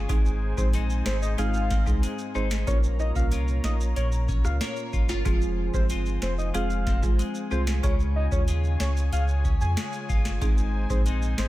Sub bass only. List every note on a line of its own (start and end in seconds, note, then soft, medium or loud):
0.09 0.54 G#1 loud
0.58 1.02 A#1 loud
1.06 1.36 G#1 loud
1.38 1.83 G#1 loud
1.87 2.01 C2 loud
2.35 2.65 G#1 medium
2.67 3.12 A#1 loud
3.16 3.60 C2 medium
3.64 3.94 A#1 loud
3.96 4.41 A#1 loud
4.45 4.59 C#2 loud
4.93 5.23 G1 loud
5.25 5.70 F1 loud
5.74 6.18 G1 medium
6.22 6.52 F1 medium
6.54 6.99 F1 loud
7.03 7.18 G#1 medium
7.51 7.81 C2 medium
7.83 8.28 C#2 loud
8.32 8.76 D#2 loud
8.80 9.10 C#2 loud
9.12 9.57 C#2 loud
9.61 9.76 F2 loud
10.09 10.39 G1 medium
10.42 10.86 G#1 loud
10.90 11.34 A#1 loud
11.38 11.48 G#1 loud